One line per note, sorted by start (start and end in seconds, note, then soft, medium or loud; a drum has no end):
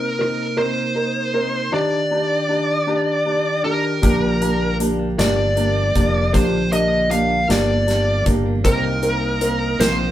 0.00 1.70 C3 medium
0.00 1.69 A#3 medium
0.00 1.70 D#4 medium
0.00 0.21 A#4 medium
0.18 0.45 C4 medium
0.18 0.45 D#4 medium
0.18 0.45 A#4 medium
0.18 0.56 A#4 medium
0.57 0.83 C4 medium
0.57 0.83 D#4 medium
0.57 0.83 A#4 medium
0.57 1.74 C5 loud
0.95 1.22 D#4 medium
0.95 1.22 A#4 medium
1.34 1.60 C4 medium
1.34 1.60 D#4 medium
1.34 1.60 A#4 medium
1.72 4.01 D#3 medium
1.72 4.01 D4 medium
1.72 1.99 D4 medium
1.72 1.99 D#4 medium
1.72 8.60 G4 medium
1.72 1.99 G4 medium
1.72 3.62 D5 loud
2.11 2.37 D4 medium
2.11 2.38 D#4 medium
2.11 2.38 G4 medium
2.49 2.75 D4 medium
2.49 2.75 D#4 medium
2.49 2.76 G4 medium
2.87 3.14 D4 medium
2.87 3.14 D#4 medium
2.87 3.14 G4 medium
3.26 3.52 D4 medium
3.26 3.53 D#4 medium
3.26 3.53 G4 medium
3.64 3.91 D4 medium
3.64 3.91 D#4 medium
3.64 3.91 G4 medium
3.64 4.76 A#4 medium
4.02 5.15 A#1 medium
4.02 8.60 D3 medium
4.02 5.18 F3 medium
4.02 4.29 A#3 medium
4.02 8.60 A#3 medium
4.02 4.29 D4 medium
4.02 4.29 G4 loud
4.02 5.19 G4 medium
4.02 kick loud
4.02 closed hi-hat medium
4.22 4.60 D4 soft
4.41 4.67 A#3 medium
4.41 4.80 A#3 medium
4.41 4.67 D4 medium
4.41 4.68 G4 medium
4.41 closed hi-hat soft
4.61 4.98 D4 medium
4.79 5.06 A#3 medium
4.79 5.57 A#3 medium
4.79 5.06 D4 medium
4.79 5.06 G4 medium
4.79 closed hi-hat medium
4.99 5.37 D4 medium
5.18 5.92 G1 medium
5.18 6.33 F3 medium
5.18 5.44 A#3 medium
5.18 5.44 D4 medium
5.18 5.45 G4 medium
5.18 6.34 G4 medium
5.18 6.34 D5 medium
5.18 snare medium
5.18 closed hi-hat medium
5.38 5.75 D4 medium
5.56 5.83 A#3 medium
5.56 5.95 A#3 medium
5.56 5.83 D4 medium
5.56 5.83 G4 medium
5.56 closed hi-hat soft
5.76 6.14 D4 medium
5.95 6.32 F1 medium
5.95 6.21 A#3 medium
5.95 6.72 A#3 medium
5.95 6.21 D4 medium
5.95 6.22 G4 medium
5.95 kick medium
5.95 closed hi-hat medium
6.15 6.52 D4 medium
6.33 7.45 A#1 medium
6.33 7.49 F3 medium
6.33 6.60 A#3 medium
6.33 6.60 D4 medium
6.33 6.60 G4 loud
6.33 7.50 G4 medium
6.33 6.70 C5 medium
6.33 kick loud
6.33 closed hi-hat medium
6.53 6.90 D4 soft
6.72 6.98 A#3 medium
6.72 7.11 A#3 soft
6.72 6.98 D4 medium
6.72 6.98 G4 medium
6.72 7.08 D#5 medium
6.72 closed hi-hat soft
6.92 7.29 D4 medium
7.09 7.36 A#3 medium
7.09 7.88 A#3 medium
7.09 7.36 D4 medium
7.09 7.36 G4 medium
7.09 7.47 F5 medium
7.09 closed hi-hat medium
7.30 7.68 D4 medium
7.49 8.22 G1 medium
7.49 8.72 F3 medium
7.49 7.75 A#3 medium
7.49 7.75 D4 medium
7.49 7.75 G4 medium
7.49 8.65 G4 medium
7.49 8.23 D5 medium
7.49 snare medium
7.49 closed hi-hat medium
7.69 8.06 D4 medium
7.87 8.26 A#3 medium
7.87 8.13 D4 medium
7.87 8.14 G4 medium
7.87 snare soft
7.87 closed hi-hat soft
8.08 8.45 D4 medium
8.26 8.62 G1 medium
8.26 8.52 A#3 medium
8.26 8.65 A#3 medium
8.26 8.52 D4 medium
8.26 8.52 G4 medium
8.26 kick medium
8.26 closed hi-hat medium
8.46 8.72 D4 medium
8.64 9.76 C2 loud
8.64 10.11 C3 medium
8.64 10.11 A#3 medium
8.64 9.04 A#3 medium
8.64 8.90 C4 medium
8.64 10.11 D#4 medium
8.64 8.90 D#4 medium
8.64 9.80 G4 medium
8.64 8.91 A#4 loud
8.64 9.80 A#4 loud
8.64 kick loud
8.64 closed hi-hat medium
8.84 9.22 D#4 medium
9.02 9.41 A#3 medium
9.02 9.29 C4 medium
9.02 9.29 D#4 medium
9.02 9.29 A#4 medium
9.02 closed hi-hat soft
9.22 9.61 D#4 medium
9.41 9.79 A#3 medium
9.41 9.67 C4 medium
9.41 9.67 D#4 medium
9.41 9.67 A#4 medium
9.41 closed hi-hat medium
9.61 9.98 D#4 medium
9.79 10.11 A#1 medium
9.79 10.11 A#3 medium
9.79 10.06 C4 medium
9.79 10.05 D#4 medium
9.79 10.11 G4 medium
9.79 10.06 A#4 medium
9.79 10.11 C5 loud
9.79 snare medium
9.79 closed hi-hat loud
9.99 10.11 D#4 medium